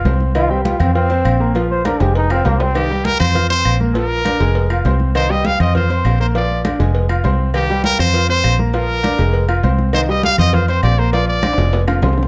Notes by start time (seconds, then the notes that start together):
0.05 C2 C4 C5 C6, cowbell, high conga, low timbale, low agogo
0.20 high conga
0.35 D#3 D#4 F4 D#5, cowbell, high conga, low agogo, claves
0.50 G3 C4 G4 G5, high conga
0.65 F4, cowbell, high conga, low agogo
0.80 F2 C4 C5 C6, cowbell, high conga, low conga, low agogo, claves
0.95 C4 F4 F5 F6, cowbell, high conga
1.10 C4 C5 C6, high conga, low agogo
1.25 A#1, cowbell, high conga, low agogo, claves
1.40 A#3 A#4 A#5
1.55 F3 F4 F5, cowbell, high conga, low agogo
1.70 C5, high conga
1.85 D4 A#4 D5 D6, cowbell, high conga, high timbale, low agogo, claves
2.00 F1 G#3 G4 G#4 G#5, cowbell, high timbale, low agogo
2.15 D#4, cowbell, high conga
2.30 C4 F4 F5 F6, high conga, low timbale, low agogo, claves
2.45 C2 A#3 C4 C5 C6, cowbell, high conga, low timbale, low agogo
2.60 C4, low timbale
2.75 D#3 D#4 G4 D#5, cowbell, high conga, low agogo, claves
2.90 G3 G4 G5, high conga
3.05 A#4, cowbell, high conga, low agogo
3.20 F2 C4 C5 C6, cowbell, high conga, low conga, low agogo, claves
3.35 F4 F5 F6, cowbell, high conga, low conga
3.50 C4 C5 C6, high conga, low agogo
3.65 A#1, cowbell, high conga, low agogo, claves
3.80 A#3 A#4 A#5, high conga
3.94 F3 F4 A#4 F5, cowbell, high conga, low agogo
4.11 high conga
4.25 D4 D5 D6, cowbell, high conga, low agogo, claves
4.40 F1 G#3 G#4 G#5, cowbell, low agogo
4.55 cowbell, high conga
4.70 F4 F5 F6, high conga, low agogo, claves
4.85 C2 C4 C5 C6, cowbell, high conga, low timbale, low agogo
5.00 high conga
5.15 D#3 D#4 C5 D#5, cowbell, high conga, low agogo, claves
5.30 G3 G4 D#5 G5, high conga
5.45 F5, cowbell, high conga, low agogo
5.60 F2 C4 C5 D#5 C6, cowbell, high conga, low conga, low agogo, claves
5.74 F4 C5 F5 F6, cowbell, high conga, low conga
5.90 C4 C5 C6, high conga, low agogo
6.05 A#1, cowbell, high conga, low timbale, low agogo, claves
6.20 A#3 A#4 C5 A#5
6.35 F3 F4 D5 F5, cowbell, high conga, low agogo
6.50 high conga
6.65 D4 D5 D6, cowbell, high conga, low agogo, claves
6.79 F1 G#3 G#4 G#5, cowbell, low agogo
6.95 cowbell, high conga
7.09 F4 F5 F6, high conga, low agogo, claves
7.24 C2 C4 C5 C6, cowbell, high conga, low timbale, low agogo
7.54 D#3 D#4 G4 D#5, cowbell, high conga, low agogo, claves
7.69 G3 G4 G5, high conga
7.84 A#4, cowbell, high conga, low agogo
7.99 F2 C4 C5 C6, cowbell, high conga, low conga, low agogo, claves
8.14 F4 F5 F6, cowbell, high conga
8.28 C4 C5 C6, high conga, low agogo
8.44 A#1, cowbell, high conga, low timbale, low agogo, claves
8.59 A#3 A#4 A#5, high conga
8.73 F3 F4 A#4 F5, cowbell, high conga, low agogo
8.89 high conga
9.03 D4 D5 D6, cowbell, high conga, low agogo, claves
9.18 F1 G#3 G#4 G#5, cowbell, low agogo
9.33 cowbell, high conga
9.49 F4 F5 F6, high conga, low agogo, claves
9.63 C2 C4 C5 C6, cowbell, high conga, low agogo
9.79 high conga
9.93 D#3 D#4 C5 D#5, cowbell, high conga, low agogo, claves
10.08 G3 G4 D#5 G5, high conga
10.23 F5, cowbell, high conga, low agogo
10.38 F2 C4 C5 D#5 C6, cowbell, high conga, low conga, low agogo, claves
10.53 F4 C5 F5 F6, cowbell, high conga, low conga
10.68 C4 C5 C6, high conga, low agogo
10.83 A#1 D5, cowbell, low timbale, low agogo, claves
10.98 A#3 A#4 C5 A#5
11.13 F3 F4 D5 F5, cowbell, high conga, low agogo
11.28 D5, high conga
11.43 D4 D5 D6, cowbell, high conga, high timbale, low agogo, claves
11.53 high timbale
11.58 F1 G#3 G#4 G#5, cowbell, high bongo, low agogo
11.73 cowbell, high bongo, high conga, low timbale
11.88 F4 F5 F6, low bongo, high conga, low agogo, claves
12.02 C2 C4 C5 C6, cowbell, low bongo, high conga, low timbale, low agogo
12.13 low timbale
12.18 low bongo
12.23 low timbale